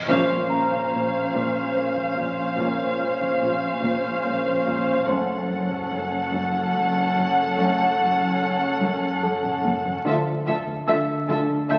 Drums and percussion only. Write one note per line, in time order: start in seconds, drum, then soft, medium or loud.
0.08 taiko medium
0.71 taiko medium
1.33 taiko medium
1.96 taiko medium
2.17 taiko low medium
2.58 taiko medium
3.21 taiko medium
3.84 taiko medium
4.46 taiko medium
4.67 taiko low medium
5.08 taiko medium
5.71 taiko medium
6.34 taiko medium
6.96 taiko medium
7.17 taiko low medium
7.58 taiko medium
8.20 taiko medium
8.82 taiko medium
9.44 taiko low-mid medium
9.65 taiko high medium
9.85 taiko low medium
10.05 taiko medium
10.67 taiko medium
11.28 taiko medium